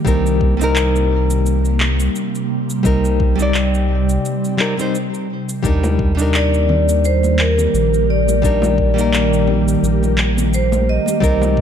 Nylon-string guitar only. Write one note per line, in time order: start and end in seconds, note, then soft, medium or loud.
0.05 0.55 G3 medium
0.05 0.56 C4 medium
0.05 0.56 D#4 medium
0.05 0.57 A#4 medium
0.57 2.80 G3 medium
0.57 2.81 C4 medium
0.62 2.82 D#4 medium
0.62 2.83 A#4 medium
2.83 3.34 G3 medium
2.83 3.34 C4 medium
2.83 3.35 D#4 medium
2.83 3.35 A#4 medium
3.36 4.55 G3 medium
3.36 4.56 C4 medium
3.40 4.57 D#4 medium
3.40 4.58 D5 medium
4.57 4.73 G3 medium
4.57 4.74 C4 medium
4.57 4.74 D#4 medium
4.57 4.75 A#4 medium
4.77 4.95 G3 medium
4.77 4.96 C4 medium
4.77 4.96 D#4 medium
4.77 4.97 C5 medium
5.63 6.13 G3 medium
5.63 6.14 D4 medium
5.63 6.14 D#4 medium
5.63 6.15 A#4 medium
6.15 8.38 G3 medium
6.15 8.39 D4 medium
6.19 8.40 D#4 medium
6.19 8.41 A#4 medium
8.42 8.92 G3 medium
8.42 8.93 D4 medium
8.42 8.93 D#4 medium
8.42 8.94 A#4 medium
8.94 11.17 G3 medium
8.94 11.18 A#3 medium
8.98 11.19 D#4 medium
8.98 11.20 A#4 medium
11.20 11.61 G3 medium
11.20 11.61 C4 medium
11.20 11.61 D#4 medium
11.20 11.61 A#4 medium